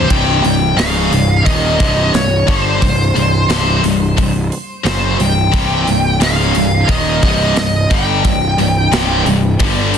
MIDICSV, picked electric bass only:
0, 0, Header, 1, 2, 480
1, 0, Start_track
1, 0, Tempo, 678733
1, 74, Time_signature, 4, 2, 24, 8
1, 7057, End_track
2, 0, Start_track
2, 0, Title_t, "Picked electric bass"
2, 0, Program_c, 0, 34
2, 72, Note_on_c, 0, 24, 90
2, 296, Note_off_c, 0, 24, 0
2, 303, Note_on_c, 0, 24, 71
2, 531, Note_off_c, 0, 24, 0
2, 542, Note_on_c, 0, 25, 98
2, 771, Note_off_c, 0, 25, 0
2, 787, Note_on_c, 0, 24, 79
2, 1013, Note_off_c, 0, 24, 0
2, 1035, Note_on_c, 0, 27, 90
2, 1257, Note_off_c, 0, 27, 0
2, 1273, Note_on_c, 0, 24, 75
2, 1496, Note_off_c, 0, 24, 0
2, 1513, Note_on_c, 0, 24, 69
2, 1736, Note_off_c, 0, 24, 0
2, 1755, Note_on_c, 0, 31, 89
2, 1978, Note_off_c, 0, 31, 0
2, 1994, Note_on_c, 0, 24, 80
2, 2217, Note_off_c, 0, 24, 0
2, 2228, Note_on_c, 0, 24, 69
2, 2454, Note_off_c, 0, 24, 0
2, 2472, Note_on_c, 0, 24, 84
2, 2696, Note_off_c, 0, 24, 0
2, 2709, Note_on_c, 0, 24, 85
2, 2934, Note_off_c, 0, 24, 0
2, 2957, Note_on_c, 0, 24, 71
2, 3179, Note_off_c, 0, 24, 0
2, 3428, Note_on_c, 0, 30, 87
2, 3654, Note_off_c, 0, 30, 0
2, 3665, Note_on_c, 0, 24, 75
2, 3892, Note_off_c, 0, 24, 0
2, 3914, Note_on_c, 0, 24, 82
2, 4137, Note_off_c, 0, 24, 0
2, 4153, Note_on_c, 0, 24, 73
2, 4376, Note_off_c, 0, 24, 0
2, 4386, Note_on_c, 0, 25, 95
2, 4612, Note_off_c, 0, 25, 0
2, 4629, Note_on_c, 0, 24, 78
2, 4854, Note_off_c, 0, 24, 0
2, 4871, Note_on_c, 0, 27, 92
2, 5095, Note_off_c, 0, 27, 0
2, 5110, Note_on_c, 0, 24, 95
2, 5334, Note_off_c, 0, 24, 0
2, 5341, Note_on_c, 0, 24, 81
2, 5570, Note_off_c, 0, 24, 0
2, 5594, Note_on_c, 0, 31, 89
2, 5816, Note_off_c, 0, 31, 0
2, 5834, Note_on_c, 0, 24, 74
2, 6056, Note_off_c, 0, 24, 0
2, 6066, Note_on_c, 0, 24, 79
2, 6292, Note_off_c, 0, 24, 0
2, 6305, Note_on_c, 0, 24, 95
2, 6531, Note_off_c, 0, 24, 0
2, 6547, Note_on_c, 0, 24, 86
2, 6772, Note_off_c, 0, 24, 0
2, 6787, Note_on_c, 0, 31, 90
2, 7057, Note_off_c, 0, 31, 0
2, 7057, End_track
0, 0, End_of_file